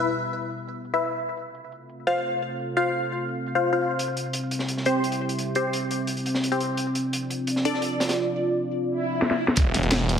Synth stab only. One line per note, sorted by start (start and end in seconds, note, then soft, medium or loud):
0.94 1.03 E4 medium
0.94 1.03 B4 medium
0.94 1.03 E5 medium
2.07 2.22 F4 loud
2.07 2.22 C5 medium
2.07 2.22 F5 loud
2.77 2.86 F4 medium
2.77 2.86 C5 medium
2.77 2.86 F5 loud
3.55 3.71 F4 medium
3.55 3.71 C5 medium
3.55 3.71 F5 loud
3.73 3.88 F4 medium
3.73 3.88 C5 medium
3.73 3.88 F5 medium
4.86 5.01 C4 loud
4.86 5.01 G4 medium
4.86 5.01 C5 loud
5.56 5.65 C4 loud
5.56 5.65 G4 medium
5.56 5.65 C5 loud
6.52 6.61 C4 medium
6.52 6.61 G4 medium
6.52 6.61 C5 medium
7.65 7.80 D4 loud
7.65 7.80 A4 medium
7.65 7.80 D5 loud